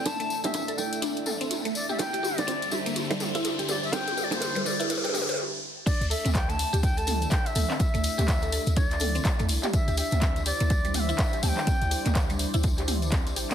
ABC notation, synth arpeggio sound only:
X:1
M:4/4
L:1/16
Q:"Swing 16ths" 1/4=124
K:Cmix
V:1 name="Synth arpeggio sound"
z A, z G z A A z D z A C z A, z G | z G G z C z G B, z G, z E z G G z | C z G B, z G, z E z G G z4 z | D z A C z A, z G z A A z D z A C |
z A, z G z A A z D z A C z A, z G | z G G z C z G B, z G, z E z G G z | C z G B, z G, z E z G G z C z G B, |]